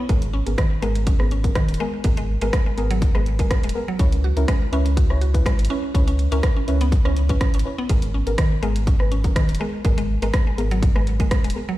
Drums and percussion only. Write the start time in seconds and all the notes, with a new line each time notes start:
0.09 kick, closed hi-hat
0.22 closed hi-hat
0.47 closed hi-hat
0.58 kick, cross-stick, closed hi-hat
0.82 closed hi-hat
0.95 closed hi-hat
1.07 kick, closed hi-hat
1.20 cross-stick
1.31 closed hi-hat
1.44 kick, closed hi-hat
1.55 kick, cross-stick, closed hi-hat
1.69 closed hi-hat
1.74 closed hi-hat
2.04 kick, closed hi-hat
2.17 closed hi-hat
2.42 closed hi-hat
2.53 kick, cross-stick, closed hi-hat
2.78 closed hi-hat
2.91 closed hi-hat
3.02 kick, closed hi-hat
3.15 cross-stick
3.26 closed hi-hat
3.39 kick, closed hi-hat
3.51 kick, cross-stick, closed hi-hat
3.63 closed hi-hat
3.69 closed hi-hat
3.99 kick, closed hi-hat
4.12 closed hi-hat
4.37 closed hi-hat
4.48 kick, cross-stick, closed hi-hat
4.73 closed hi-hat
4.86 closed hi-hat
4.97 kick, closed hi-hat
5.10 cross-stick
5.21 closed hi-hat
5.34 kick, closed hi-hat
5.46 kick, cross-stick, closed hi-hat
5.59 closed hi-hat
5.65 closed hi-hat
5.95 kick, closed hi-hat
6.08 closed hi-hat
6.19 closed hi-hat
6.32 closed hi-hat
6.43 kick, cross-stick, closed hi-hat
6.68 closed hi-hat
6.81 closed hi-hat
6.92 kick, closed hi-hat
7.05 cross-stick
7.16 closed hi-hat
7.29 kick, closed hi-hat
7.41 kick, cross-stick, closed hi-hat
7.54 closed hi-hat
7.59 closed hi-hat
7.89 kick, closed hi-hat
8.02 closed hi-hat
8.27 closed hi-hat
8.38 kick, cross-stick, closed hi-hat
8.63 closed hi-hat
8.76 closed hi-hat
8.87 kick, closed hi-hat
9.00 cross-stick
9.12 closed hi-hat
9.24 kick, closed hi-hat
9.36 kick, cross-stick, closed hi-hat
9.49 closed hi-hat
9.55 closed hi-hat
9.85 kick, closed hi-hat
9.98 closed hi-hat
10.22 closed hi-hat
10.34 kick, cross-stick, closed hi-hat
10.58 closed hi-hat
10.71 closed hi-hat
10.82 kick, closed hi-hat
10.96 cross-stick
11.07 closed hi-hat
11.20 kick, closed hi-hat
11.31 kick, cross-stick, closed hi-hat
11.44 closed hi-hat
11.50 closed hi-hat